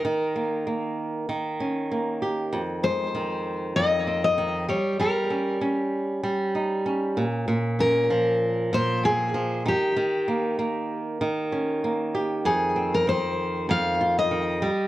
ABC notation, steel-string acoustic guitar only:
X:1
M:4/4
L:1/16
Q:"Swing 16ths" 1/4=97
K:Fm
V:1 name="Steel-string acoustic guitar"
B2 z12 z2 | z2 c6 e3 e3 d2 | B4 z12 | z2 B6 c2 A4 G2- |
G12 z4 | A3 B c4 f3 e4- e |]